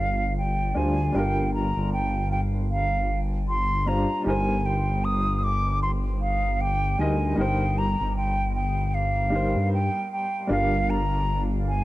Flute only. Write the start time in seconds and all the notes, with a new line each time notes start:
0.00 F5
0.38 G5
0.77 G#5
1.16 G5
1.54 A#5
1.93 G5
2.32 G5
2.71 F5
3.49 C6
3.88 A#5
4.27 G#5
4.66 G5
5.05 D#6
5.39 D#6
5.44 D6
5.82 C6
6.21 F5
6.61 G5
7.00 G#5
7.39 G5
7.78 A#5
8.17 G5
8.55 G5
8.94 F5
9.73 G5
10.12 G5
10.51 F5
10.90 A#5
11.68 G#5